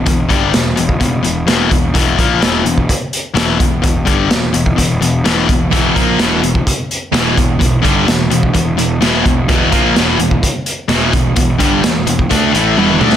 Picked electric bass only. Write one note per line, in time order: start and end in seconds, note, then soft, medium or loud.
0.07 0.28 E1 medium
0.30 0.52 G1 medium
0.54 0.75 E1 medium
0.78 0.99 E1 medium
1.01 1.22 E1 medium
1.24 1.46 E1 medium
1.48 1.69 E1 medium
1.72 1.93 E1 medium
1.95 2.17 E1 medium
2.18 2.40 A#1 medium
2.42 2.64 E1 medium
2.65 2.87 E1 medium
3.35 3.57 E1 medium
3.60 3.82 E1 medium
3.84 4.05 E1 medium
4.07 4.29 G1 medium
4.31 4.52 E1 medium
4.54 4.76 E1 medium
4.78 5.00 E1 medium
5.01 5.23 E1 medium
5.25 5.47 E1 medium
5.49 5.70 E1 medium
5.73 5.94 E1 medium
5.96 6.18 A#1 medium
6.18 6.40 E1 medium
6.42 6.64 E1 medium
7.13 7.35 E1 medium
7.38 7.59 E1 medium
7.61 7.82 E1 medium
7.85 8.06 G1 medium
8.07 8.29 E1 medium
8.30 8.52 E1 medium
8.55 8.76 E1 medium
8.78 8.99 E1 medium
9.01 9.23 E1 medium
9.25 9.47 E1 medium
9.49 9.70 E1 medium
9.73 9.94 A#1 medium
9.95 10.17 E1 medium
10.18 10.40 E1 medium
10.89 11.11 E1 medium
11.13 11.35 E1 medium
11.37 11.58 E1 medium
11.61 11.82 G1 medium
11.84 12.05 E1 medium
12.07 12.28 E1 medium
12.31 12.52 D2 medium
12.54 12.75 A1 medium
12.77 12.99 E1 medium
13.00 13.17 D2 medium